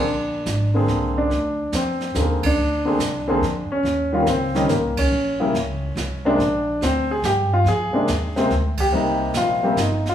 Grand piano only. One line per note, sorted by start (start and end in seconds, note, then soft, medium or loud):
0.00 1.16 D4 medium
0.74 1.28 D3 medium
0.74 1.28 A#3 medium
0.74 1.29 C4 medium
0.74 1.29 G#4 medium
1.18 1.76 D4 medium
1.75 2.13 C4 medium
2.15 2.40 D3 medium
2.15 2.18 A#3 medium
2.15 2.41 C4 medium
2.15 2.41 G#4 medium
2.19 2.46 A#3 medium
2.46 3.75 D4 medium
2.85 2.98 D3 medium
2.85 2.99 A#3 medium
2.85 2.99 C4 medium
2.85 3.00 G#4 medium
3.28 3.41 D3 medium
3.28 3.41 A#3 medium
3.28 3.41 C4 medium
3.28 3.42 G#4 medium
3.72 4.12 C#4 medium
4.13 4.26 D#3 medium
4.13 4.26 G3 medium
4.13 4.26 C#4 medium
4.13 4.27 F4 medium
4.23 4.27 A#3 medium
4.29 4.72 C4 medium
4.55 4.68 D#3 medium
4.55 4.68 G3 medium
4.55 4.68 C#4 medium
4.55 4.69 D#4 medium
4.70 4.96 A#3 medium
4.99 6.29 C#4 medium
5.40 5.53 C#3 medium
5.40 5.53 G3 medium
5.40 5.53 A#3 medium
5.40 5.54 E4 medium
6.25 6.38 C3 medium
6.25 6.38 G#3 medium
6.25 6.38 A#3 medium
6.25 6.84 D4 loud
6.83 7.08 C4 medium
7.11 7.25 G#4 loud
7.25 7.53 G4 loud
7.53 7.67 F4 loud
7.68 8.48 G#4 loud
7.93 8.07 C3 medium
7.93 8.07 G#3 medium
7.93 8.07 A#3 medium
7.93 8.08 D4 medium
8.36 8.49 C3 medium
8.36 8.50 G#3 medium
8.36 8.50 A#3 medium
8.36 8.51 C4 medium
8.80 9.38 G4 medium
8.93 9.58 C3 medium
8.93 9.58 G3 medium
8.93 9.59 A#3 medium
8.93 9.59 D#4 medium
9.37 9.80 F4 medium
9.63 9.76 C3 medium
9.63 9.77 G3 medium
9.63 9.77 A#3 medium
9.63 9.77 C4 medium
9.80 10.05 D#4 medium
10.09 10.15 F4 medium